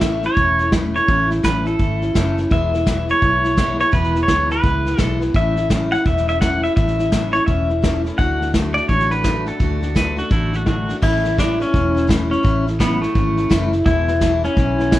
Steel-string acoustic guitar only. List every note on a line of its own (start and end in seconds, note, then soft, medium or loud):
0.02 0.24 A2 medium
0.02 0.24 E3 medium
0.02 0.25 A3 medium
0.02 0.23 C#4 medium
0.02 0.22 E4 medium
0.24 0.37 A3 soft
0.24 0.38 C#4 soft
0.24 0.37 E4 soft
0.37 0.60 E3 soft
0.37 0.60 A3 medium
0.37 0.60 C#4 medium
0.37 0.59 E4 medium
0.60 0.73 A3 soft
0.60 0.74 C#4 soft
0.60 0.73 E4 soft
0.73 0.95 A2 medium
0.73 0.96 E3 medium
0.73 0.96 A3 medium
0.73 0.95 C#4 medium
0.73 0.94 E4 medium
0.95 1.07 A3 soft
0.95 1.08 C#4 soft
0.95 1.08 E4 soft
1.08 1.30 A2 medium
1.08 1.31 E3 medium
1.08 1.31 A3 medium
1.08 1.30 C#4 medium
1.08 1.29 E4 medium
1.30 1.43 A3 soft
1.30 1.43 C#4 soft
1.30 1.44 E4 soft
1.43 1.66 A2 medium
1.43 1.66 E3 medium
1.43 1.66 A3 medium
1.43 1.66 C#4 medium
1.43 1.64 E4 medium
1.65 1.79 A3 soft
1.65 1.79 C#4 soft
1.65 1.79 E4 medium
1.79 2.01 E3 medium
1.79 2.02 A3 medium
1.79 2.02 C#4 medium
1.79 2.00 E4 medium
2.02 2.14 A3 soft
2.02 2.15 C#4 soft
2.02 2.15 E4 soft
2.14 2.37 A2 medium
2.14 2.37 E3 medium
2.14 2.38 A3 medium
2.14 2.37 C#4 medium
2.14 2.36 E4 medium
2.37 2.51 A3 soft
2.37 2.51 C#4 soft
2.37 2.50 E4 soft
2.50 2.73 E2 medium
2.50 2.73 B2 medium
2.50 2.73 E3 medium
2.50 2.73 G#3 medium
2.50 2.72 B3 medium
2.50 2.71 E4 medium
2.72 2.86 E3 soft
2.72 2.86 G#3 soft
2.72 2.87 B3 soft
2.72 2.86 E4 soft
2.86 3.08 E2 medium
2.86 3.09 B2 medium
2.86 3.09 E3 medium
2.86 3.09 G#3 medium
2.86 3.09 B3 medium
2.86 3.08 E4 medium
3.09 3.21 E3 soft
3.09 3.22 G#3 soft
3.09 3.23 B3 soft
3.09 3.22 E4 soft
3.22 3.44 E3 medium
3.22 3.45 G#3 medium
3.22 3.43 B3 medium
3.22 3.43 E4 medium
3.44 3.56 E3 soft
3.44 3.57 G#3 soft
3.44 3.57 B3 soft
3.44 3.57 E4 soft
3.57 3.79 E2 medium
3.57 3.79 B2 medium
3.57 3.80 E3 medium
3.57 3.78 G#3 medium
3.57 3.78 B3 medium
3.57 3.77 E4 medium
3.78 3.91 E3 soft
3.78 3.91 G#3 soft
3.78 3.92 B3 soft
3.78 3.92 E4 soft
3.91 4.14 E2 medium
3.91 4.15 B2 medium
3.91 4.15 E3 medium
3.91 4.14 G#3 medium
3.91 4.13 B3 medium
3.91 4.12 E4 medium
4.13 4.27 E3 soft
4.13 4.28 G#3 soft
4.13 4.28 B3 soft
4.13 4.28 E4 soft
4.28 4.50 E2 medium
4.28 4.50 B2 medium
4.28 4.50 E3 medium
4.28 4.51 G#3 medium
4.28 4.50 B3 medium
4.28 4.49 E4 medium
4.50 4.61 E3 soft
4.50 4.62 G#3 soft
4.50 4.63 B3 soft
4.50 4.64 E4 soft
4.62 4.85 E3 medium
4.62 4.86 G#3 medium
4.62 4.85 B3 medium
4.62 4.84 E4 medium
4.85 4.97 E3 soft
4.85 4.98 G#3 soft
4.85 4.98 B3 soft
4.85 4.98 E4 soft
4.98 5.21 E2 medium
4.98 5.21 B2 medium
4.98 5.21 E3 medium
4.98 5.21 G#3 medium
4.98 5.20 B3 medium
4.98 5.18 E4 medium
5.20 5.33 E3 soft
5.20 5.35 G#3 soft
5.20 5.34 B3 soft
5.20 5.34 E4 soft
5.34 5.57 A2 medium
5.34 5.57 E3 medium
5.34 5.57 A3 medium
5.34 5.56 C#4 medium
5.34 5.54 E4 medium
5.56 5.70 A3 soft
5.56 5.70 C#4 soft
5.56 5.70 E4 soft
5.70 5.92 A2 medium
5.70 5.92 E3 medium
5.70 5.93 A3 medium
5.70 5.91 C#4 medium
5.70 5.90 E4 medium
5.91 6.05 A3 soft
5.91 6.06 C#4 soft
5.91 6.05 E4 soft
6.06 6.28 E3 medium
6.06 6.28 A3 medium
6.06 6.28 C#4 medium
6.06 6.26 E4 medium
6.28 6.41 A3 soft
6.28 6.41 C#4 soft
6.28 6.41 E4 soft
6.41 6.63 A2 medium
6.41 6.64 E3 medium
6.41 6.64 A3 medium
6.41 6.63 C#4 medium
6.41 6.62 E4 medium
6.63 6.76 A3 soft
6.63 6.77 C#4 soft
6.63 6.76 E4 medium
6.77 6.99 A2 medium
6.77 6.99 E3 medium
6.77 6.99 A3 medium
6.77 6.99 C#4 medium
6.77 6.97 E4 medium
6.98 7.12 A3 soft
6.98 7.12 C#4 soft
6.98 7.12 E4 soft
7.12 7.35 A2 medium
7.12 7.35 E3 medium
7.12 7.35 A3 medium
7.12 7.34 C#4 medium
7.12 7.32 E4 medium
7.34 7.46 A3 soft
7.34 7.47 C#4 soft
7.34 7.47 E4 medium
7.47 7.70 E3 medium
7.47 7.70 A3 medium
7.47 7.69 C#4 medium
7.47 7.68 E4 medium
7.69 7.83 A3 soft
7.69 7.83 C#4 soft
7.69 7.83 E4 soft
7.82 8.05 A2 medium
7.82 8.05 E3 medium
7.82 8.06 A3 medium
7.82 8.05 C#4 medium
7.82 8.03 E4 medium
8.04 8.18 A3 soft
8.04 8.19 C#4 soft
8.04 8.18 E4 medium
8.18 8.41 D3 medium
8.18 8.41 A3 medium
8.18 8.41 D4 medium
8.18 8.39 F#4 medium
8.40 8.53 A3 soft
8.40 8.54 D4 soft
8.40 8.54 F#4 soft
8.54 8.76 D3 medium
8.54 8.76 A3 medium
8.54 8.76 D4 medium
8.54 8.74 F#4 medium
8.75 8.89 A3 soft
8.75 8.90 D4 soft
8.75 8.89 F#4 soft
8.89 9.11 D3 medium
8.89 9.12 A3 medium
8.89 9.11 D4 medium
8.89 9.09 F#4 medium
9.11 9.23 A3 soft
9.11 9.24 D4 soft
9.11 9.24 F#4 soft
9.24 9.47 D3 medium
9.24 9.47 A3 medium
9.24 9.46 D4 medium
9.24 9.45 F#4 medium
9.46 9.59 A3 soft
9.46 9.59 D4 soft
9.46 9.60 F#4 soft
9.59 9.82 D3 medium
9.59 9.83 A3 medium
9.59 9.81 D4 medium
9.59 9.79 F#4 medium
9.81 9.95 A3 soft
9.81 9.95 D4 soft
9.81 9.95 F#4 soft
9.95 10.18 D3 medium
9.95 10.18 A3 medium
9.95 10.17 D4 medium
9.95 10.15 F#4 medium
10.17 10.30 A3 soft
10.17 10.31 D4 soft
10.17 10.31 F#4 medium
10.31 10.53 D3 medium
10.31 10.54 A3 medium
10.31 10.53 D4 medium
10.31 10.52 F#4 medium
10.53 10.66 A3 soft
10.53 10.67 F#4 soft
10.66 10.89 D3 medium
10.66 10.89 A3 medium
10.66 10.89 D4 medium
10.66 10.88 F#4 medium
10.89 11.03 A3 soft
10.89 11.03 D4 soft
10.89 11.02 F#4 medium
11.03 11.25 A2 medium
11.03 11.25 E3 medium
11.03 11.25 A3 medium
11.03 11.24 C#4 medium
11.03 11.23 E4 medium
11.24 11.37 A3 soft
11.24 11.38 C#4 soft
11.24 11.38 E4 soft
11.37 11.60 A2 medium
11.37 11.60 E3 medium
11.37 11.61 A3 medium
11.37 11.60 C#4 medium
11.37 11.59 E4 medium
11.60 11.73 A3 soft
11.60 11.74 C#4 soft
11.60 11.73 E4 medium
11.74 11.96 E3 medium
11.74 11.96 A3 medium
11.74 11.95 C#4 medium
11.74 11.93 E4 medium
11.94 12.07 A3 soft
11.94 12.07 C#4 soft
11.94 12.08 E4 soft
12.07 12.30 A2 medium
12.07 12.31 E3 medium
12.07 12.31 A3 medium
12.07 12.30 C#4 medium
12.07 12.28 E4 medium
12.30 12.43 A3 soft
12.30 12.43 C#4 soft
12.30 12.43 E4 soft
12.43 12.66 A2 medium
12.43 12.66 E3 medium
12.43 12.66 A3 medium
12.43 12.67 C#4 medium
12.43 12.65 E4 medium
12.66 12.79 A3 soft
12.66 12.80 C#4 soft
12.66 12.79 E4 soft
12.79 13.02 A2 medium
12.79 13.02 E3 medium
12.79 13.02 A3 medium
12.79 13.02 C#4 medium
12.79 13.01 E4 medium
13.02 13.15 A3 soft
13.02 13.16 C#4 soft
13.02 13.15 E4 soft
13.16 13.38 E3 medium
13.16 13.38 A3 medium
13.16 13.37 C#4 medium
13.16 13.36 E4 medium
13.37 13.50 A3 soft
13.37 13.50 C#4 soft
13.37 13.51 E4 medium
13.50 13.72 A2 medium
13.50 13.73 E3 medium
13.50 13.73 A3 medium
13.50 13.73 C#4 medium
13.50 13.71 E4 loud
13.72 13.86 A3 soft
13.72 13.86 C#4 soft
13.72 13.86 E4 soft
13.85 14.08 E2 medium
13.85 14.08 B2 medium
13.85 14.08 E3 medium
13.85 14.08 G#3 medium
13.85 14.08 B3 medium
13.85 14.07 E4 medium
14.08 14.20 E3 soft
14.08 14.21 G#3 soft
14.08 14.21 B3 soft
14.08 14.22 E4 soft
14.21 14.43 E2 medium
14.21 14.44 B2 medium
14.21 14.44 E3 medium
14.21 14.44 G#3 medium
14.21 14.43 B3 medium
14.21 14.42 E4 medium
14.44 14.55 E3 soft
14.44 14.56 G#3 soft
14.44 14.57 B3 soft
14.44 14.57 E4 medium
14.56 14.79 E3 medium
14.56 14.79 G#3 medium
14.56 14.78 B3 medium
14.56 14.77 E4 medium
14.78 14.91 E3 soft
14.78 14.91 G#3 soft
14.78 14.92 B3 soft
14.78 14.92 E4 medium
14.92 14.99 E2 medium
14.92 14.99 B2 medium
14.92 14.99 E3 medium
14.92 14.99 G#3 medium
14.92 14.99 B3 medium
14.92 14.99 E4 medium